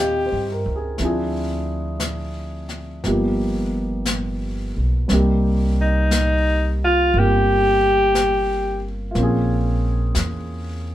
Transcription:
0.00 0.26 D#2 medium
0.00 0.98 D#3 medium
0.00 0.99 A#3 soft
0.00 0.98 C4 soft
0.00 0.99 D#4 soft
0.00 1.00 F4 soft
0.00 0.67 G4 medium
0.00 0.99 G4 medium
0.00 0.46 D#5 soft
0.00 1.00 F5 soft
0.00 1.01 G5 soft
0.26 0.68 C5 soft
0.32 0.63 G2 medium
0.52 0.81 A#4 medium
0.66 0.96 C#2 medium
0.76 1.03 G#4 medium
0.98 2.99 D2 medium
0.98 3.03 F3 soft
0.98 3.04 C4 soft
0.98 brush sweep soft
0.98 snare soft
1.02 3.05 D4 soft
1.02 3.05 E4 soft
1.02 3.06 G#4 medium
2.00 brush sweep soft
2.00 snare soft
2.00 hi-hat pedal medium
2.69 snare soft
3.04 4.71 G1 medium
3.04 5.10 F3 soft
3.04 5.08 A#3 soft
3.04 5.10 B3 soft
3.04 5.10 D#4 soft
3.04 5.10 G4 soft
3.04 brush sweep soft
3.04 snare soft
4.06 brush sweep soft
4.06 snare soft
4.06 hi-hat pedal medium
4.77 5.07 B1 medium
5.08 7.10 C2 medium
5.08 9.15 G3 soft
5.08 7.14 A#3 soft
5.08 7.16 C4 soft
5.08 brush sweep soft
5.08 snare soft
5.12 9.17 D#4 soft
5.12 9.18 G4 medium
5.81 6.78 D#4 medium
6.11 brush sweep soft
6.11 snare medium
6.11 hi-hat pedal medium
6.84 7.20 F4 medium
7.14 9.12 G1 medium
7.14 9.13 A#3 soft
7.14 9.16 C4 soft
7.14 brush sweep soft
7.19 9.09 F4 soft
7.19 8.85 G4 loud
8.15 brush sweep soft
8.15 snare soft
8.15 hi-hat pedal soft
9.11 10.95 A#3 medium
9.11 10.95 F4 medium
9.15 10.11 A#1 medium
9.15 10.95 C4 medium
9.15 brush sweep soft
9.15 snare soft
9.20 10.95 C#4 medium
9.20 10.95 G#4 medium
10.15 10.95 E2 medium
10.15 brush sweep soft
10.15 snare soft
10.15 hi-hat pedal soft

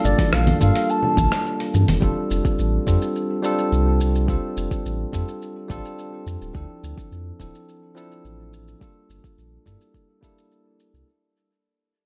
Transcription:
0.00 0.57 G3 medium
0.00 0.57 A#3 medium
0.00 0.57 D4 medium
0.00 0.58 F4 medium
0.00 0.58 A4 medium
0.04 0.14 G1 loud
0.04 0.33 D5 medium
0.04 low conga medium
0.04 shaker medium
0.18 kick loud
0.18 open hi-hat soft
0.18 high conga medium
0.18 shaker soft
0.33 0.53 A#1 medium
0.33 0.59 F5 medium
0.33 cross-stick medium
0.33 shaker soft
0.47 open hi-hat soft
0.47 low conga medium
0.60 0.71 G2 medium
0.60 1.13 G3 medium
0.60 1.14 A#3 medium
0.60 1.14 D4 medium
0.60 1.14 F4 medium
0.60 1.14 A4 medium
0.60 0.92 F5 medium
0.60 kick medium
0.60 shaker medium
0.75 open hi-hat soft
0.75 shaker soft
0.90 1.74 A5 medium
0.90 shaker soft
1.03 high conga medium
1.03 low conga medium
1.17 1.27 A#1 medium
1.17 kick medium
1.17 low conga medium
1.17 shaker medium
1.32 cross-stick medium
1.32 open hi-hat soft
1.32 shaker soft
1.46 shaker soft
1.60 open hi-hat soft
1.74 1.84 G2 medium
1.74 high conga medium
1.74 shaker medium
1.88 1.98 F1 medium
1.88 open hi-hat medium
1.88 low conga medium
1.88 shaker soft
2.01 2.12 F1 medium
2.01 2.83 G3 medium
2.01 2.83 C4 medium
2.01 2.84 D4 medium
2.01 2.84 F4 medium
2.01 2.84 A4 medium
2.01 kick loud
2.01 shaker soft
2.31 2.41 F1 medium
2.31 shaker medium
2.45 kick medium
2.45 shaker soft
2.59 2.79 A1 medium
2.59 shaker soft
2.87 2.97 F2 medium
2.87 3.40 G3 medium
2.87 3.40 C4 medium
2.87 3.41 D4 medium
2.87 3.41 F4 medium
2.87 3.41 A4 medium
2.87 kick medium
2.87 shaker medium
3.02 shaker soft
3.16 shaker soft
3.42 4.25 G3 medium
3.42 4.25 C4 medium
3.42 4.25 D4 medium
3.42 4.26 F4 medium
3.42 4.26 A4 loud
3.42 shaker medium
3.58 shaker soft
3.72 4.36 C2 medium
3.72 shaker soft
4.01 shaker medium
4.15 shaker soft
4.27 5.09 G3 medium
4.27 5.10 C4 medium
4.27 5.10 D4 medium
4.27 5.10 F4 medium
4.27 5.11 A4 medium
4.27 kick loud
4.27 shaker soft
4.57 4.67 F1 loud
4.57 shaker medium
4.71 kick medium
4.71 shaker soft
4.85 5.05 A1 medium
4.85 shaker soft
5.12 5.24 F2 medium
5.12 5.66 G3 medium
5.12 5.66 C4 medium
5.12 5.67 D4 medium
5.12 5.67 F4 medium
5.12 5.67 A4 medium
5.12 kick medium
5.12 shaker medium
5.28 shaker soft
5.42 shaker soft
5.68 5.80 A1 medium
5.68 6.51 G3 medium
5.68 6.51 C4 medium
5.68 6.51 D4 medium
5.68 6.52 F4 medium
5.68 6.52 A4 loud
5.68 kick medium
5.68 shaker medium
5.85 shaker soft
5.99 shaker soft
6.26 6.37 F2 medium
6.26 shaker medium
6.41 6.51 D1 medium
6.41 shaker soft
6.53 6.65 D2 medium
6.53 7.36 F3 medium
6.53 7.36 C4 medium
6.53 7.36 D4 medium
6.53 7.37 E4 medium
6.53 7.37 A4 medium
6.53 kick loud
6.53 shaker soft
6.83 6.93 D2 loud
6.83 shaker medium
6.98 kick medium
6.98 shaker soft
7.12 7.32 F2 medium
7.12 shaker soft
7.39 7.50 D1 medium
7.39 7.93 F3 medium
7.39 7.93 C4 medium
7.39 7.93 D4 medium
7.39 7.93 E4 medium
7.39 7.94 A4 medium
7.39 kick medium
7.39 shaker medium
7.55 shaker soft
7.69 shaker soft
7.95 8.77 F3 medium
7.95 8.77 C4 medium
7.95 8.78 D4 medium
7.95 8.78 E4 medium
7.95 8.79 A4 medium
7.95 shaker medium
8.12 shaker soft
8.25 8.75 A1 medium
8.25 shaker soft
8.53 shaker medium
8.68 shaker soft
8.80 9.62 G3 medium
8.80 9.62 A#3 medium
8.80 9.63 D4 medium
8.80 9.63 F4 medium
8.80 9.64 A4 medium
8.80 kick loud
8.80 shaker soft
9.10 9.20 G1 loud
9.10 shaker medium
9.24 kick medium
9.24 shaker soft
9.38 9.58 A#1 medium
9.38 shaker soft
9.66 9.76 G2 medium
9.66 10.19 G3 medium
9.66 10.19 A#3 medium
9.66 10.19 D4 medium
9.66 10.20 E4 medium
9.66 10.20 A4 medium
9.66 kick medium
9.66 shaker medium
9.81 shaker soft
9.94 kick medium
9.94 shaker soft
10.21 11.04 G3 medium
10.21 11.04 A#3 medium
10.21 11.04 D4 medium
10.21 11.05 E4 medium
10.21 11.05 A4 medium
10.21 kick medium
10.21 shaker medium
10.38 shaker soft
10.52 shaker soft
10.80 shaker medium
10.94 11.04 C2 medium
10.94 shaker soft

